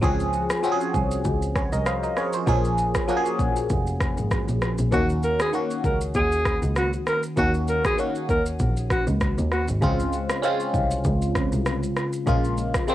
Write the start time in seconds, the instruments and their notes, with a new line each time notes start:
0.01 double bass C#2, fm electric piano F3 C4 C#4 G#4, kick, shaker
0.20 shaker
0.33 shaker
0.50 cross-stick, shaker
0.63 fm electric piano F3 C4 C#4 F#4, shaker
0.72 fm electric piano G#4
0.81 shaker
0.94 double bass C2, kick, shaker
1.11 shaker
1.25 double bass C#2, kick, shaker
1.42 shaker
1.56 fm electric piano G#4 C#5, kick, cross-stick, shaker
1.72 double bass C2, fm electric piano A#4 D#5, shaker
1.86 fm electric piano C5 F5, cross-stick, shaker
2.03 fm electric piano A#4 D#5, shaker
2.17 fm electric piano G#4 C#5, cross-stick, shaker
2.33 fm electric piano F4 C5, shaker
2.47 double bass A#1, fm electric piano F3 A#3 C#4 G#4, kick, shaker
2.65 shaker
2.78 shaker
2.95 kick, cross-stick, shaker
3.08 fm electric piano F3 A#3 C#4 F#4, shaker
3.17 fm electric piano G#4
3.26 shaker
3.39 double bass A#1, kick, shaker
3.56 shaker
3.70 double bass F1, kick, shaker
3.87 shaker
4.01 kick, cross-stick, shaker
4.17 double bass G#1, shaker
4.31 kick, cross-stick, shaker
4.48 double bass A#1, shaker
4.62 cross-stick, shaker
4.78 double bass A#1, shaker
4.91 double bass D#2, fm electric piano D#3 A#3 C#4 F#4, alto saxophone F#4, kick, shaker
5.10 shaker
5.23 alto saxophone A#4, shaker
5.40 alto saxophone G#4, cross-stick, shaker
5.52 fm electric piano D#3 A#3 C#4 F#4, shaker
5.70 shaker
5.84 double bass C#2, alto saxophone A#4, kick, shaker
6.01 shaker
6.14 double bass D#2, alto saxophone G#4, kick, shaker
6.32 shaker
6.45 kick, cross-stick, shaker
6.62 double bass C#2, shaker
6.76 alto saxophone F#4, cross-stick, shaker
6.93 shaker
7.07 alto saxophone A#4, cross-stick, shaker
7.23 shaker
7.36 double bass D#2, fm electric piano D#3 A#3 C#4 F#4, alto saxophone F#4, kick, shaker
7.54 shaker
7.68 alto saxophone A#4, shaker
7.85 alto saxophone G#4, kick, cross-stick, shaker
7.97 fm electric piano D#3 A#3 C#4 F#4, shaker
8.15 shaker
8.29 double bass D#2, alto saxophone A#4, kick, shaker
8.46 shaker
8.59 double bass A#1, kick, shaker
8.77 shaker
8.90 alto saxophone F#4, kick, cross-stick, shaker
9.07 double bass C#2, shaker
9.21 kick, cross-stick, shaker
9.38 double bass D#2, shaker
9.52 alto saxophone F#4, cross-stick, shaker
9.68 double bass G#1, shaker
9.81 double bass C#2, fm electric piano C#3 G#3 C4 F4, kick, shaker
9.99 shaker
10.13 shaker
10.29 cross-stick, shaker
10.42 fm electric piano G#3 C4 C#4 F4, shaker
10.60 shaker
10.74 double bass C2, kick, shaker
10.91 shaker
11.04 double bass C#2, kick, shaker
11.22 shaker
11.35 kick, cross-stick, shaker
11.52 double bass C2, shaker
11.66 cross-stick, shaker
11.83 shaker
11.96 cross-stick, shaker
12.13 shaker
12.26 double bass A#1, fm electric piano C#3 G#3 A#3 F4, kick, shaker
12.44 shaker
12.58 shaker
12.74 kick, cross-stick, shaker
12.87 fm electric piano C3 G#3 A#3 C4, shaker